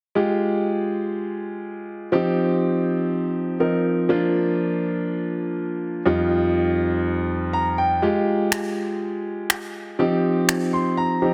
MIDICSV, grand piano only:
0, 0, Header, 1, 2, 480
1, 0, Start_track
1, 0, Tempo, 491803
1, 153, Time_signature, 4, 2, 24, 8
1, 11066, End_track
2, 0, Start_track
2, 0, Title_t, "Grand piano"
2, 0, Program_c, 0, 0
2, 149, Note_on_c, 0, 56, 74
2, 155, Note_on_c, 0, 65, 66
2, 159, Note_on_c, 0, 67, 78
2, 2033, Note_off_c, 0, 56, 0
2, 2036, Note_off_c, 0, 65, 0
2, 2038, Note_off_c, 0, 67, 0
2, 2069, Note_on_c, 0, 53, 74
2, 2071, Note_on_c, 0, 60, 67
2, 2075, Note_on_c, 0, 63, 68
2, 2079, Note_on_c, 0, 67, 82
2, 3482, Note_off_c, 0, 53, 0
2, 3484, Note_off_c, 0, 60, 0
2, 3486, Note_off_c, 0, 63, 0
2, 3487, Note_off_c, 0, 67, 0
2, 3511, Note_on_c, 0, 53, 54
2, 3513, Note_on_c, 0, 60, 49
2, 3515, Note_on_c, 0, 63, 53
2, 3516, Note_on_c, 0, 70, 59
2, 3976, Note_off_c, 0, 53, 0
2, 3991, Note_on_c, 0, 53, 77
2, 3993, Note_off_c, 0, 60, 0
2, 3994, Note_off_c, 0, 63, 0
2, 3994, Note_on_c, 0, 58, 66
2, 3995, Note_off_c, 0, 70, 0
2, 3997, Note_on_c, 0, 62, 68
2, 4000, Note_on_c, 0, 65, 81
2, 5874, Note_off_c, 0, 53, 0
2, 5875, Note_off_c, 0, 58, 0
2, 5877, Note_off_c, 0, 62, 0
2, 5878, Note_off_c, 0, 65, 0
2, 5910, Note_on_c, 0, 41, 77
2, 5914, Note_on_c, 0, 55, 65
2, 5917, Note_on_c, 0, 63, 66
2, 5920, Note_on_c, 0, 65, 83
2, 7353, Note_on_c, 0, 82, 71
2, 7576, Note_off_c, 0, 82, 0
2, 7594, Note_on_c, 0, 79, 70
2, 7793, Note_off_c, 0, 41, 0
2, 7795, Note_off_c, 0, 55, 0
2, 7797, Note_off_c, 0, 63, 0
2, 7798, Note_off_c, 0, 65, 0
2, 7817, Note_off_c, 0, 79, 0
2, 7830, Note_on_c, 0, 56, 75
2, 7833, Note_on_c, 0, 65, 68
2, 7838, Note_on_c, 0, 67, 79
2, 9713, Note_off_c, 0, 56, 0
2, 9715, Note_off_c, 0, 65, 0
2, 9718, Note_off_c, 0, 67, 0
2, 9748, Note_on_c, 0, 53, 75
2, 9750, Note_on_c, 0, 60, 68
2, 9754, Note_on_c, 0, 63, 66
2, 9757, Note_on_c, 0, 67, 79
2, 10473, Note_on_c, 0, 84, 66
2, 10696, Note_off_c, 0, 84, 0
2, 10710, Note_on_c, 0, 82, 74
2, 10927, Note_off_c, 0, 53, 0
2, 10928, Note_off_c, 0, 60, 0
2, 10930, Note_off_c, 0, 63, 0
2, 10931, Note_off_c, 0, 67, 0
2, 10948, Note_on_c, 0, 53, 56
2, 10949, Note_on_c, 0, 60, 54
2, 10951, Note_on_c, 0, 63, 55
2, 10952, Note_on_c, 0, 67, 63
2, 11047, Note_off_c, 0, 82, 0
2, 11066, Note_off_c, 0, 53, 0
2, 11066, Note_off_c, 0, 60, 0
2, 11066, Note_off_c, 0, 63, 0
2, 11066, Note_off_c, 0, 67, 0
2, 11066, End_track
0, 0, End_of_file